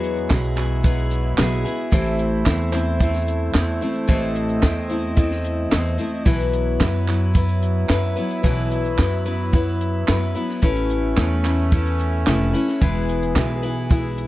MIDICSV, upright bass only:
0, 0, Header, 1, 2, 480
1, 0, Start_track
1, 0, Tempo, 541516
1, 1704, Time_signature, 4, 2, 24, 8
1, 5067, Tempo, 545951
1, 12590, End_track
2, 0, Start_track
2, 0, Title_t, "Upright bass"
2, 0, Program_c, 0, 32
2, 0, Note_on_c, 0, 40, 92
2, 232, Note_off_c, 0, 40, 0
2, 270, Note_on_c, 0, 35, 105
2, 1190, Note_off_c, 0, 35, 0
2, 1224, Note_on_c, 0, 35, 100
2, 1443, Note_off_c, 0, 35, 0
2, 1705, Note_on_c, 0, 33, 96
2, 2148, Note_off_c, 0, 33, 0
2, 2185, Note_on_c, 0, 40, 105
2, 3109, Note_off_c, 0, 40, 0
2, 3142, Note_on_c, 0, 40, 100
2, 3362, Note_off_c, 0, 40, 0
2, 3624, Note_on_c, 0, 33, 81
2, 4070, Note_off_c, 0, 33, 0
2, 4103, Note_on_c, 0, 40, 100
2, 5032, Note_off_c, 0, 40, 0
2, 5070, Note_on_c, 0, 40, 103
2, 5288, Note_off_c, 0, 40, 0
2, 5545, Note_on_c, 0, 35, 86
2, 5990, Note_off_c, 0, 35, 0
2, 6027, Note_on_c, 0, 42, 109
2, 6950, Note_off_c, 0, 42, 0
2, 6983, Note_on_c, 0, 42, 100
2, 7202, Note_off_c, 0, 42, 0
2, 7464, Note_on_c, 0, 35, 89
2, 7909, Note_off_c, 0, 35, 0
2, 7942, Note_on_c, 0, 42, 101
2, 8868, Note_off_c, 0, 42, 0
2, 8911, Note_on_c, 0, 42, 102
2, 9127, Note_off_c, 0, 42, 0
2, 9385, Note_on_c, 0, 33, 90
2, 9830, Note_off_c, 0, 33, 0
2, 9866, Note_on_c, 0, 40, 110
2, 10791, Note_off_c, 0, 40, 0
2, 10832, Note_on_c, 0, 29, 103
2, 11048, Note_off_c, 0, 29, 0
2, 11309, Note_on_c, 0, 28, 81
2, 11753, Note_off_c, 0, 28, 0
2, 11789, Note_on_c, 0, 35, 107
2, 12590, Note_off_c, 0, 35, 0
2, 12590, End_track
0, 0, End_of_file